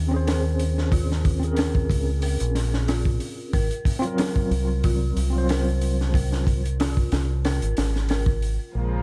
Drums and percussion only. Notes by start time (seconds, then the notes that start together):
0.27 snare, open hi-hat
0.59 open hi-hat
0.78 snare
0.92 kick, open hi-hat
1.12 snare
1.25 kick, open hi-hat
1.43 closed hi-hat
1.56 snare, open hi-hat
1.75 kick
1.90 kick, open hi-hat
2.22 open hi-hat
2.40 closed hi-hat
2.55 snare, open hi-hat
2.74 snare
2.88 snare, open hi-hat
3.05 kick
3.20 open hi-hat
3.53 kick, open hi-hat
3.71 closed hi-hat
3.85 kick, open hi-hat
4.03 closed hi-hat
4.18 snare, open hi-hat
4.36 kick
4.51 open hi-hat
4.84 kick, open hi-hat
5.17 open hi-hat
5.49 snare, open hi-hat
5.81 open hi-hat
6.01 snare
6.14 kick, open hi-hat
6.32 snare
6.47 kick, open hi-hat
6.65 closed hi-hat
6.80 snare, open hi-hat
6.97 kick
7.12 snare, open hi-hat
7.45 snare, open hi-hat
7.62 closed hi-hat
7.77 snare, open hi-hat
7.96 snare
8.09 snare, open hi-hat
8.26 kick
8.42 open hi-hat